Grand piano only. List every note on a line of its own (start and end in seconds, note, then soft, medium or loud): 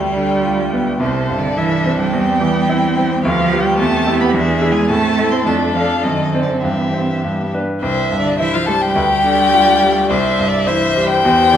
0.00 0.98 D2 medium
0.16 0.61 D3 soft
0.44 0.89 F4 soft
0.73 1.01 B3 soft
1.00 2.10 C2 medium
1.30 1.74 G2 soft
1.57 2.02 E4 soft
1.85 2.13 C4 soft
2.13 3.21 E2 medium
2.41 2.86 E3 soft
2.69 3.13 E4 medium
2.97 3.24 C4 medium
3.25 3.78 D2 medium
3.51 3.76 F4 soft
3.51 3.77 G4 medium
3.79 4.33 E2 medium
4.06 4.32 E4 soft
4.06 4.32 G4 medium
4.34 4.88 E2 medium
4.62 4.87 E4 soft
4.62 4.87 G#4 medium
4.90 5.45 A2 medium
5.18 5.44 E4 soft
5.18 5.44 A4 medium
5.46 6.02 F2 medium
5.76 6.01 D4 soft
5.76 6.02 A4 soft
6.05 6.62 F#2 soft
6.34 6.61 C4 soft
6.34 6.61 C5 soft
6.64 7.22 G2 medium
6.93 7.20 C4 soft
6.93 7.21 C5 soft
7.24 7.81 G2 soft
7.54 7.80 D4 soft
7.54 7.80 B4 soft
7.82 8.93 C2 medium
8.11 8.57 G2 soft
8.40 8.85 E4 soft
8.67 8.96 G3 medium
8.95 10.06 D2 medium
9.24 9.70 D3 medium
9.53 9.99 F4 medium
9.82 10.10 G3 medium
10.10 11.20 C2 medium
10.39 10.84 G2 medium
10.68 11.13 E4 medium
10.96 11.24 G3 medium
11.25 11.57 E2 medium
11.53 11.57 E3 medium